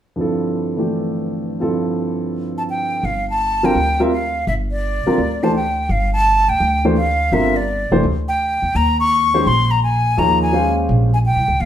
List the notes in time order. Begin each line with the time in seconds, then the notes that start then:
0.16 G2 D3 F3 C4
0.20 E4 A4
0.76 D3 E3 A3 D4 G4
1.60 G2 D3 F3 C4 E4 A4
2.58 A5
2.70 G5
3.03 G1 F5
3.30 A5
3.63 D3 G3 C4 F4 A#4 G5
3.75 D2
4.00 G3 C4 F4 A#4 E5
4.12 F5
4.47 G1 E5
4.71 D5
5.06 D3 G3 C4 F4 A#4, muted upright bass stroke
5.18 D2
5.43 E3 A3 D4 G4 C5 A5
5.55 G5
5.89 G1 F5
6.13 A5
6.48 D2 G5
6.60 D2
6.85 E3 A3 D4 G4 C5
6.97 F5
7.32 G1 D3 G3 C4 F4 A#4 E5
7.56 D5
7.91 F1 E3 A3 D4 G4 C5
8.03 D2
8.28 G5
8.62 E2
8.75 D#2 A#5
9.00 C#6
9.34 D#3 G#3 C#4 G4 C5
9.46 A#1 C6
9.71 A#5
9.83 G#5
10.17 D#2 F3 A#3 D#4 G#4 C#5 A#5
10.42 G#5
10.52 G#3 C#4 G4 C5 F5
10.89 A#1
11.14 G#5
11.26 G5
11.36 C2
11.48 C#2
11.60 D#2 F5